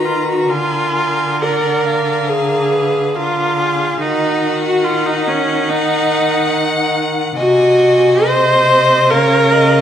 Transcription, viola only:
0.05 0.27 F4 medium
0.27 0.51 F#4 medium
0.50 1.44 F4 medium
1.42 2.31 A#4 medium
2.29 3.17 G#4 medium
3.15 3.99 F4 medium
4.00 4.63 D#4 medium
4.64 4.85 F#4 medium
4.84 5.07 F4 medium
5.06 5.29 D#4 medium
5.27 5.71 C#4 medium
5.70 6.95 D#4 medium
7.37 8.28 F#4 loud
8.26 9.12 C5 loud
9.11 9.81 A#4 loud

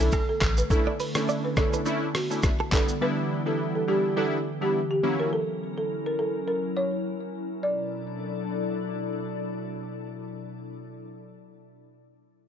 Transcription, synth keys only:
0.00 0.19 A3 medium
0.00 0.19 C#4 medium
0.00 0.19 D4 medium
0.00 0.19 E4 medium
0.70 0.91 A3 medium
0.70 0.92 C#4 medium
0.70 0.92 D4 medium
0.70 0.92 E4 loud
1.15 1.54 A3 medium
1.15 1.54 C#4 medium
1.15 1.54 D4 medium
1.15 1.54 E4 medium
1.57 1.84 A3 medium
1.57 1.84 C#4 medium
1.57 1.84 D4 medium
1.57 1.84 E4 medium
1.85 2.07 A3 loud
1.85 2.07 C#4 loud
1.85 2.07 D4 medium
1.85 2.07 E4 loud
2.30 2.50 A3 medium
2.30 2.50 C#4 medium
2.30 2.50 D4 medium
2.30 2.50 E4 medium
2.72 2.93 G3 medium
2.72 2.93 B3 medium
2.72 2.94 D4 medium
2.72 2.94 E4 medium
3.01 3.42 G3 medium
3.01 3.42 B3 medium
3.01 3.42 D4 medium
3.01 3.42 E4 loud
3.46 3.85 G3 medium
3.46 3.85 B3 medium
3.46 3.85 D4 medium
3.46 3.85 E4 medium
3.87 4.14 G3 medium
3.87 4.14 B3 medium
3.87 4.15 D4 medium
3.87 4.15 E4 medium
4.16 4.38 G3 loud
4.16 4.38 B3 medium
4.16 4.38 D4 medium
4.16 4.38 E4 loud
4.61 4.81 G3 medium
4.61 4.81 B3 medium
4.61 4.81 D4 medium
4.61 4.81 E4 medium
5.03 5.30 F#3 medium
5.03 5.30 A#3 medium
5.03 5.30 C#4 medium
5.03 5.30 E4 loud

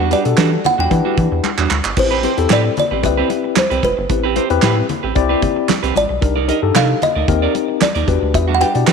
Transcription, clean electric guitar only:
0.00 0.10 G3 medium
0.00 0.11 D4 medium
0.00 0.12 F#4 loud
0.11 0.23 G3 medium
0.11 0.23 D4 medium
0.11 0.24 G4 medium
0.26 muted clean electric guitar stroke soft
0.38 0.53 G3 medium
0.38 0.52 D4 loud
0.38 0.51 F#4 loud
0.52 muted clean electric guitar stroke soft
0.65 muted clean electric guitar stroke soft
0.78 0.90 G3 medium
0.78 0.89 D4 medium
0.78 0.89 F#4 medium
0.91 muted clean electric guitar stroke soft
1.05 1.17 G3 medium
1.05 1.17 D4 medium
1.05 1.18 F#4 medium
1.18 muted clean electric guitar stroke soft
1.32 muted clean electric guitar stroke soft
1.44 muted clean electric guitar stroke soft
1.58 1.69 G3 medium
1.58 1.70 D4 medium
1.58 1.70 F#4 medium
1.70 muted clean electric guitar stroke soft
1.84 muted clean electric guitar stroke soft
1.97 muted clean electric guitar stroke soft
2.11 2.22 C4 medium
2.11 2.23 G4 medium
2.11 2.24 B4 medium
2.23 2.35 C4 medium
2.23 2.36 G4 medium
2.23 2.36 C5 medium
2.38 muted clean electric guitar stroke soft
2.50 2.65 C4 medium
2.50 2.64 G4 loud
2.50 2.63 B4 loud
2.65 muted clean electric guitar stroke medium
2.77 muted clean electric guitar stroke soft
2.91 3.02 C4 medium
2.91 3.02 G4 medium
2.91 3.01 B4 medium
3.03 muted clean electric guitar stroke soft
3.17 3.29 C4 medium
3.17 3.29 G4 medium
3.17 3.30 B4 medium
3.30 muted clean electric guitar stroke soft
3.44 muted clean electric guitar stroke soft
3.56 muted clean electric guitar stroke soft
3.70 3.82 C4 medium
3.70 3.82 G4 medium
3.70 3.83 B4 medium
3.83 muted clean electric guitar stroke soft
3.97 muted clean electric guitar stroke medium
4.09 muted clean electric guitar stroke soft
4.24 4.34 C4 medium
4.24 4.35 G4 medium
4.24 4.37 B4 medium
4.36 4.48 C4 medium
4.36 4.48 G4 medium
4.36 4.49 C5 medium
4.50 muted clean electric guitar stroke soft
4.62 4.77 C4 loud
4.62 4.76 G4 loud
4.62 4.75 B4 loud
4.77 muted clean electric guitar stroke soft
4.89 muted clean electric guitar stroke soft
5.03 5.14 C4 medium
5.03 5.14 G4 medium
5.03 5.14 B4 medium
5.16 muted clean electric guitar stroke soft
5.29 5.41 C4 medium
5.29 5.41 G4 medium
5.29 5.42 B4 medium
5.42 muted clean electric guitar stroke soft
5.56 muted clean electric guitar stroke soft
5.69 muted clean electric guitar stroke soft
5.83 5.94 C4 medium
5.83 5.95 G4 medium
5.83 5.95 B4 medium
6.09 muted clean electric guitar stroke medium
6.21 muted clean electric guitar stroke soft
6.36 6.47 D#4 medium
6.36 6.48 A#4 medium
6.36 6.49 D5 medium
6.48 6.60 D#4 medium
6.48 6.61 A#4 medium
6.48 6.61 D#5 medium
6.75 6.90 D#4 medium
6.75 6.89 A#4 loud
6.75 6.88 D5 loud
6.89 muted clean electric guitar stroke soft
7.01 muted clean electric guitar stroke soft
7.15 7.27 D#4 medium
7.15 7.26 A#4 medium
7.15 7.26 D5 medium
7.42 7.53 D#4 medium
7.42 7.54 A#4 medium
7.42 7.55 D5 medium
7.55 muted clean electric guitar stroke medium
7.68 muted clean electric guitar stroke soft
7.81 muted clean electric guitar stroke soft
7.95 8.08 D#4 medium
7.95 8.08 A#4 medium
7.95 8.08 D5 medium
8.07 muted clean electric guitar stroke soft
8.22 muted clean electric guitar stroke medium
8.34 muted clean electric guitar stroke soft
8.48 8.59 G3 medium
8.48 8.60 D4 medium
8.48 8.61 F#4 medium
8.60 8.72 G3 medium
8.60 8.73 D4 medium
8.60 8.73 G4 medium
8.74 muted clean electric guitar stroke soft
8.87 8.93 G3 medium
8.87 8.93 D4 loud
8.87 8.93 F#4 medium

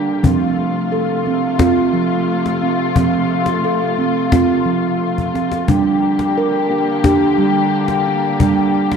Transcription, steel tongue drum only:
0.00 0.23 D4 medium
0.23 1.30 F3 medium
0.23 0.91 C4 medium
0.92 1.26 A4 medium
1.27 1.58 C4 medium
1.59 1.86 C4 medium
1.59 2.28 F4 medium
1.93 2.73 F3 medium
2.63 2.96 C4 medium
2.95 4.03 F3 medium
2.95 3.64 C4 medium
3.64 3.98 A4 medium
3.98 4.31 C4 medium
4.32 4.59 C4 medium
4.32 5.00 F4 medium
4.65 5.46 F3 medium
5.34 5.68 C4 medium
5.68 6.75 G3 medium
5.68 6.37 D4 medium
6.38 6.71 A#4 medium
6.71 7.03 D4 medium
7.04 7.31 D4 medium
7.04 7.72 G4 medium
7.38 8.19 G3 medium
8.07 8.39 D4 medium
8.40 8.97 G3 medium
8.40 8.97 D4 medium

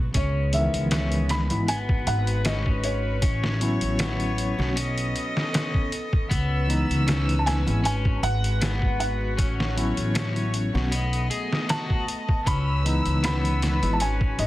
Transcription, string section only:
0.00 0.12 G#3 medium
0.00 0.12 B3 medium
0.00 0.12 F#4 medium
0.15 1.68 C#3 medium
0.15 1.67 G#3 medium
0.15 1.68 B3 medium
1.68 3.21 G#3 medium
1.68 4.74 F#4 medium
1.68 3.21 B4 medium
3.21 4.75 A3 medium
3.21 4.74 C#5 medium
4.77 6.29 B3 medium
4.77 6.29 A4 medium
4.77 6.29 D#5 medium
6.30 7.83 C#4 medium
6.30 9.35 B4 medium
6.30 7.83 E6 medium
7.83 9.36 G#3 medium
7.83 10.89 F#4 medium
9.39 10.90 A3 medium
9.39 10.91 C#5 medium
10.90 12.44 A3 medium
10.90 12.44 B3 medium
10.90 12.44 D#5 medium
12.44 13.98 C#4 medium
12.44 14.47 B4 medium
12.44 13.98 E6 medium
13.99 14.47 G#3 medium
13.99 14.47 F#4 medium

